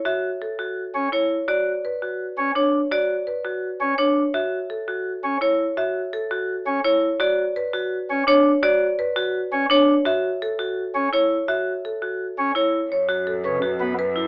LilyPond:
<<
  \new Staff \with { instrumentName = "Marimba" } { \time 4/4 \key a \major \tempo 4 = 168 e''8 r8 a'8 r4. cis''8 r8 | d''8 r8 b'8 r4. cis''8 r8 | d''8 r8 b'8 r4. cis''8 r8 | e''8 r8 a'8 r4. cis''8 r8 |
e''8 r8 a'8 r4. cis''8 r8 | d''8 r8 b'8 r4. cis''8 r8 | d''8 r8 b'8 r4. cis''8 r8 | e''8 r8 a'8 r4. cis''8 r8 |
e''8 r8 a'8 r4. cis''8 r8 | \key fis \minor cis''8 r8 a'8 r4. b'8 r8 | }
  \new Staff \with { instrumentName = "Vibraphone" } { \time 4/4 \key a \major fis'8 r4 fis'8 r4 e'8 r8 | fis'8 r4 fis'8 r4 d'8 r8 | fis'8 r4 fis'8 r4 d'8 r8 | fis'8 r4 fis'8 r4 e'8 r8 |
fis'8 r4 fis'8 r4 e'8 r8 | fis'8 r4 fis'8 r4 d'8 r8 | fis'8 r4 fis'8 r4 d'8 r8 | fis'8 r4 fis'8 r4 e'8 r8 |
fis'8 r4 fis'8 r4 e'8 r8 | \key fis \minor r8 fis'8 r8 b'8 fis'8 r4 e'8 | }
  \new Staff \with { instrumentName = "Pipe organ" } { \time 4/4 \key a \major r2 r8 cis'8 r4 | r2 r8 cis'8 r4 | r2 r8 cis'8 r4 | r2 r8 cis'8 r4 |
r2 r8 cis'8 r4 | r2 r8 cis'8 r4 | r2 r8 cis'8 r4 | r2 r8 cis'8 r4 |
r2 r8 cis'8 r4 | \key fis \minor r4. cis8 r8 b8 r4 | }
  \new Staff \with { instrumentName = "Cello" } { \clef bass \time 4/4 \key a \major r1 | r1 | r1 | r1 |
r1 | r1 | r1 | r1 |
r1 | \key fis \minor fis,1 | }
>>